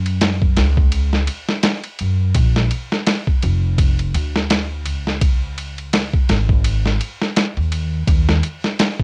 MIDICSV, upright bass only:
0, 0, Header, 1, 2, 480
1, 0, Start_track
1, 0, Tempo, 714286
1, 1587, Time_signature, 4, 2, 24, 8
1, 6070, End_track
2, 0, Start_track
2, 0, Title_t, "Upright bass"
2, 0, Program_c, 0, 32
2, 0, Note_on_c, 0, 42, 98
2, 369, Note_off_c, 0, 42, 0
2, 390, Note_on_c, 0, 37, 104
2, 849, Note_off_c, 0, 37, 0
2, 1348, Note_on_c, 0, 42, 84
2, 1563, Note_off_c, 0, 42, 0
2, 1580, Note_on_c, 0, 34, 100
2, 1799, Note_off_c, 0, 34, 0
2, 2307, Note_on_c, 0, 29, 100
2, 2767, Note_off_c, 0, 29, 0
2, 2788, Note_on_c, 0, 38, 92
2, 3266, Note_off_c, 0, 38, 0
2, 3266, Note_on_c, 0, 37, 89
2, 4207, Note_off_c, 0, 37, 0
2, 4229, Note_on_c, 0, 32, 98
2, 4688, Note_off_c, 0, 32, 0
2, 5088, Note_on_c, 0, 39, 88
2, 5409, Note_off_c, 0, 39, 0
2, 5430, Note_on_c, 0, 39, 98
2, 5644, Note_off_c, 0, 39, 0
2, 6070, End_track
0, 0, End_of_file